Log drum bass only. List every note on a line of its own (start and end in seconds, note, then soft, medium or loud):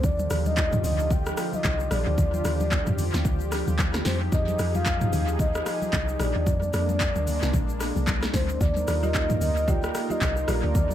0.04 0.28 D#2 loud
0.30 0.80 D#2 loud
0.84 1.34 D2 loud
1.64 1.88 C2 loud
1.91 2.05 A#1 loud
2.07 2.17 D2 loud
2.18 2.42 D#2 loud
2.44 2.83 D#2 loud
2.87 3.11 F2 medium
3.14 3.24 D#2 medium
3.25 3.63 D2 loud
3.67 4.02 D#2 loud
4.05 4.30 F2 loud
4.32 4.56 F2 medium
4.59 5.09 F2 loud
5.13 5.62 D#2 loud
5.93 6.17 C2 loud
6.20 6.34 A#1 loud
6.35 6.45 D#2 medium
6.46 6.71 F2 loud
6.73 7.12 F2 loud
7.16 7.40 D2 loud
7.42 7.52 C2 loud
7.54 7.92 A#1 loud
7.96 8.30 C2 medium
8.34 8.58 D2 medium
8.61 8.85 D#2 loud
8.88 9.37 D#2 loud
9.41 9.91 D2 loud
10.21 10.46 C2 loud
10.48 10.62 A#1 loud
10.64 10.74 D2 loud
10.75 10.95 D#2 loud